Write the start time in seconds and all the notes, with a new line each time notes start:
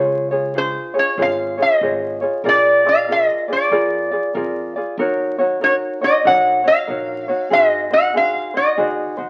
Already playing: C#2 F4 G#4 C5 C#5
0.31 F4 G#4 C#5
0.55 F4 G#4 C5
0.94 F4 G#4 C#5
0.99 C#5
1.17 G#1 F4 G#4 C5 C#5
1.22 F5
1.57 F4 G#4 C#5
1.62 D#5
1.81 G#1 F4 G#4 C5 C#5
2.21 F4 G#4 C#5
2.44 A#1 F4 G#4 A#4 D5
2.49 D5
2.84 F4 G#4 D5
2.89 F5
3.08 F4 G#4 A#4
3.12 D#5
3.48 F4 G#4 D5
3.52 D5
3.71 F2 F4 G#4 A#4 D5
4.11 F4 G#4 D5
4.34 F2 F4 G#4 A#4 D5
4.76 F4 G#4 D5
4.97 D#2 D#4 F#4 A#4 C#5
5.38 D#4 F#4 C#5
5.61 D#4 F#4 A#4 C#5
6.01 D#4 F#4 C#5 D#5
6.25 A#1 D#4 F#4 A#4 C#5 F#5
6.64 D#4 F#4 C#5 F5
6.87 A#1 D#4 F#4 A#4 C#5
7.28 D#4 F#4 C#5
7.50 G#1 D#4 F#4 G#4 C5 D#5
7.90 D#4 F#4 C5 F#5
8.14 D#4 F#4 G#4 C5 F5
8.54 D#4 F#4 C5 D#5
8.77 D#2 D#4 F#4 G#4 C5
9.17 F#2 D#4 F#4 C5